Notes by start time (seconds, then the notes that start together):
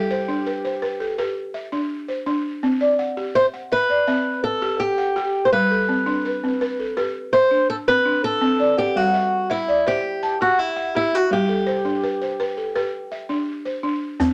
Already playing: G3 G4 A4
0.11 C5
0.28 D4
0.47 B4
0.65 C5
0.82 B4
1.00 A4
1.18 G4 B4
1.54 E5
1.72 D4
2.08 C5
2.26 D4
2.63 C4
2.81 D5
2.99 F#5
3.17 G4
3.35 C5 E5
3.54 F#5
3.72 B4 E5
3.90 D5
4.07 C4 E5
4.44 A4
4.62 G4
4.80 G4
4.98 F#5
5.16 G4
5.45 C5
5.53 G3 B4
5.71 A4
5.89 C4
6.06 D4
6.25 B4
6.44 C4
6.61 B4
6.80 A4
6.97 G4 B4
7.33 C5 E5
7.51 D4
7.70 A4
7.88 C4 B4
8.05 D4
8.24 A4
8.41 C4
8.60 D5
8.78 G4 F#5
8.96 G3 F#4
9.14 E5
9.50 E4 E5
9.68 D5
9.87 G4 C5 E5
10.23 A5
10.41 F#4 G4
10.59 E4
10.76 F#5
10.95 E4 G4
11.15 F#4
11.31 G3 G4
11.49 A4
11.67 C5
11.85 D4
12.03 B4
12.22 C5
12.40 B4
12.57 A4
12.76 G4 B4
13.12 E5
13.29 D4
13.65 C5
13.83 D4
14.20 C4, djembe bass